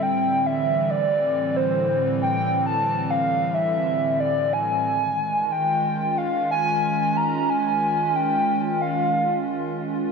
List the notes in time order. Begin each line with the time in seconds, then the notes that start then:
Already playing: A2 D3 G3 C4
0.02 G5
0.14 E3
0.46 E5
0.90 D5
1.56 C5
2.22 G5
2.66 A5
3.10 F5
3.54 E5
4.20 D5
4.53 G#5
4.86 D#3
4.92 G#3
5.32 F4
5.52 G5
5.79 C#4
6.18 F5
6.51 G#5
7.17 A#5
7.50 G#5
8.16 G5
8.81 F5